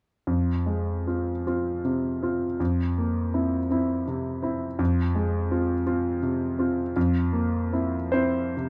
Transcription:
grand piano
0.27 F2
0.66 G#3
1.07 C4 F4
1.47 C4 F4
1.85 C3
2.22 C4 F4
2.60 F2
2.98 A#3
3.34 C4 E4
3.70 C4 E4
4.08 C3
4.42 C4 E4
4.79 F2
5.15 G#3
5.51 C4 F4
5.87 C4 F4
6.23 C3
6.59 C4 F4
6.96 F2
7.33 A#3
7.73 C4 E4
8.12 C4 E4 C5
8.57 C3

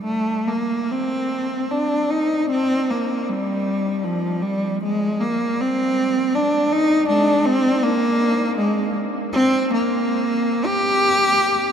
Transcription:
cello
0.05 A3
0.48 A#3
0.92 C4
1.71 D4
2.10 D#4
2.50 C4
2.91 A#3
3.28 G3
4.04 F3
4.42 G3
4.84 G#3
5.21 A#3
5.61 C4
6.35 D4
6.73 D#4
7.08 G#3 D4
7.46 C4
7.83 A#3
8.58 G#3
9.32 C4
9.74 A#3
10.66 G4

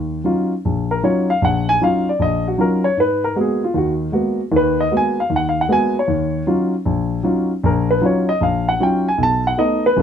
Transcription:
grand piano
Already playing: D#2
0.24 F#3 C#4 D#4 F4
0.65 A#1
0.91 A#4
1.03 F#3 C#4 D#4 F4 C#5
1.30 F5
1.42 A#1 F#5
1.69 G#5
1.81 F#3 C#4 D#4 F4 F5
2.09 D5
2.19 A#1 D#5
2.48 F#4
2.58 F#3 C#4 D#4 F4 A#4
2.84 C#5
2.97 G#2 B4
3.24 A#4
3.36 G#3 A#3 B3 F#4
3.41 G#4
3.64 F4
3.74 D#2 D#3 F#4
4.12 G#3 A#3 B3 F#4
4.52 D#2 D#3
4.56 B4
4.81 D#5
4.91 G#3 A#3 B3 F#4
4.97 G#5
5.20 F5
5.30 D#2
5.36 F#5
5.49 F5
5.61 F#5
5.69 G#3 A#3 B3 F#4 G#5
5.99 C#5
6.08 D#2
6.47 F#3 C#4 D#4 F4
6.85 A#1
7.23 F#3 C#4 D#4 F4
7.63 A#1 A#4
7.91 B4
8.01 F#3 C#4 D#4 F4
8.05 C#5
8.29 D#5
8.41 A#1 F5
8.69 F#5
8.80 F#3 C#4 D#4 F4 G5
9.08 G#5
9.18 B1
9.23 A5
9.47 F#5
9.58 A3 B3 D#4 D#5
9.86 B4
9.96 F#1 F#2

